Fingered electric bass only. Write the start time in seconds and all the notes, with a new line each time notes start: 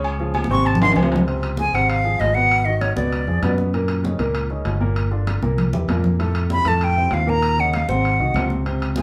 Already playing: C#2
0.49 G#1
0.96 C#2
1.73 G#1
2.20 G#1
2.97 C#2
3.27 F2
3.43 F#2
4.19 C#2
4.65 G1
5.42 C2
5.73 E2
5.88 F2
6.65 F2
7.12 D#2
7.89 G#1
8.20 C2
8.35 C#2